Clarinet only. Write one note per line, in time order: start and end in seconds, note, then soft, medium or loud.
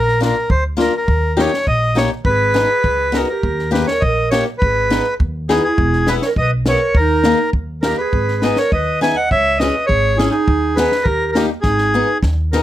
2.28 3.12 G#4 medium
3.18 3.30 F#4 medium
3.31 3.72 G4 medium
3.77 3.89 G#4 soft
3.91 4.03 A#4 medium
4.06 4.32 A#4 medium
4.34 4.46 A#4 medium
4.65 5.18 G#4 medium
5.53 5.65 E4 medium
5.67 6.07 E4 medium
6.12 6.17 G#4 medium
6.26 6.32 A#4 medium
6.40 6.53 B4 medium
6.70 6.95 A#4 medium
6.99 7.52 D#4 medium
7.84 7.97 G4 medium
8.00 8.41 G#4 medium
8.43 8.56 B4 medium
8.59 8.71 A#4 medium
8.74 9.01 B4 medium
9.02 9.15 E5 medium
9.17 9.30 D#5 medium
9.31 9.58 C#5 medium
9.59 9.86 B4 medium
9.88 10.16 G#4 medium
10.17 10.30 E4 medium
10.30 10.72 D#4 medium
10.76 11.03 G#4 medium
11.06 11.34 G4 medium
11.36 11.48 G4 medium
11.64 12.19 D#4 medium